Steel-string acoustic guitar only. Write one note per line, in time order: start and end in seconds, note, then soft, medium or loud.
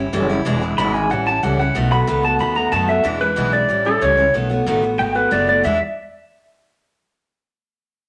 0.00 0.12 G3 medium
0.00 0.13 C#4 medium
0.00 0.13 E4 medium
0.13 0.29 A2 medium
0.13 0.30 E3 medium
0.13 0.30 G3 loud
0.13 0.29 C#4 medium
0.13 0.28 E4 loud
0.29 0.46 G3 medium
0.29 0.46 C#4 medium
0.29 0.46 E4 medium
0.45 0.62 E2 medium
0.45 0.62 B2 medium
0.45 0.62 E3 loud
0.45 0.62 G#3 medium
0.45 0.61 D4 loud
0.45 0.60 E4 loud
0.61 0.77 E3 medium
0.61 0.78 G#3 medium
0.61 0.78 D4 medium
0.61 0.78 E4 medium
0.78 0.94 E2 medium
0.78 0.94 B2 medium
0.78 0.95 E3 medium
0.78 0.95 G#3 medium
0.78 0.94 D4 medium
0.78 0.93 E4 loud
0.94 1.09 E3 soft
0.94 1.11 G#3 soft
0.94 1.11 D4 medium
0.94 1.10 E4 medium
1.10 1.26 E3 medium
1.10 1.27 G3 medium
1.10 1.26 C#4 medium
1.10 1.25 E4 medium
1.26 1.42 G3 soft
1.26 1.43 C#4 soft
1.26 1.43 E4 medium
1.43 1.59 A2 medium
1.43 1.59 E3 medium
1.43 1.59 G3 medium
1.43 1.60 C#4 medium
1.43 1.58 E4 medium
1.59 1.75 G3 soft
1.59 1.76 C#4 medium
1.59 1.75 E4 medium
1.75 1.91 B2 medium
1.75 1.92 D#3 medium
1.75 1.92 A3 medium
1.75 1.91 B3 medium
1.75 1.90 F#4 loud
1.91 2.07 A3 soft
1.91 2.07 B3 medium
1.91 2.08 F#4 medium
2.07 2.24 B2 medium
2.07 2.24 D#3 loud
2.07 2.24 A3 medium
2.07 2.23 B3 medium
2.07 2.22 F#4 medium
2.23 2.39 A3 soft
2.23 2.39 B3 medium
2.23 2.40 F#4 medium
2.39 2.56 D#3 medium
2.39 2.56 A3 medium
2.39 2.55 B3 medium
2.39 2.54 F#4 medium
2.55 2.71 A3 soft
2.55 2.71 B3 medium
2.55 2.72 F#4 medium
2.72 2.88 B2 medium
2.72 2.88 D#3 medium
2.72 2.89 A3 medium
2.72 2.88 B3 medium
2.72 2.86 F#4 medium
2.88 3.04 A3 soft
2.88 3.04 B3 soft
2.88 3.04 F#4 medium
3.04 3.20 E2 medium
3.04 3.21 B2 medium
3.04 3.21 E3 medium
3.04 3.20 G#3 medium
3.04 3.19 D4 medium
3.04 3.19 E4 medium
3.20 3.36 E3 soft
3.20 3.36 G#3 soft
3.20 3.36 D4 medium
3.20 3.37 E4 medium
3.36 3.53 E2 medium
3.36 3.53 B2 medium
3.36 3.53 E3 medium
3.36 3.52 G#3 medium
3.36 3.51 D4 medium
3.36 3.51 E4 medium
3.52 3.67 E3 soft
3.52 3.69 G#3 soft
3.52 3.69 D4 medium
3.52 3.69 E4 medium
3.68 3.85 E3 medium
3.68 3.86 G3 medium
3.68 3.85 C#4 medium
3.68 3.84 E4 medium
3.85 4.01 G3 soft
3.85 4.01 C#4 soft
3.85 4.01 E4 medium
4.01 4.18 A2 medium
4.01 4.18 E3 medium
4.01 4.18 G3 medium
4.01 4.17 C#4 medium
4.01 4.16 E4 medium
4.17 4.34 G3 soft
4.17 4.35 C#4 medium
4.17 4.34 E4 medium
4.34 4.50 B2 medium
4.34 4.50 D#3 medium
4.34 4.51 A3 medium
4.34 4.50 B3 medium
4.34 4.48 F#4 medium
4.50 4.66 A3 soft
4.50 4.67 B3 medium
4.50 4.66 F#4 medium
4.66 4.83 B2 loud
4.66 4.83 D#3 loud
4.66 4.83 A3 loud
4.66 4.82 B3 medium
4.66 4.81 F#4 loud
4.82 4.98 A3 soft
4.82 4.98 B3 medium
4.82 4.99 F#4 medium
4.98 5.15 D#3 medium
4.98 5.15 A3 medium
4.98 5.14 B3 medium
4.98 5.13 F#4 medium
5.15 5.30 A3 soft
5.15 5.31 B3 soft
5.15 5.31 F#4 soft
5.31 5.47 B2 medium
5.31 5.48 D#3 medium
5.31 5.48 A3 medium
5.31 5.47 B3 medium
5.31 5.46 F#4 medium
5.47 5.64 A3 soft
5.47 5.64 B3 soft
5.47 5.64 F#4 soft
5.63 5.77 E2 medium
5.63 5.77 B2 medium
5.63 5.77 E3 medium
5.63 5.77 G#3 medium
5.63 5.78 D4 medium
5.63 5.78 E4 loud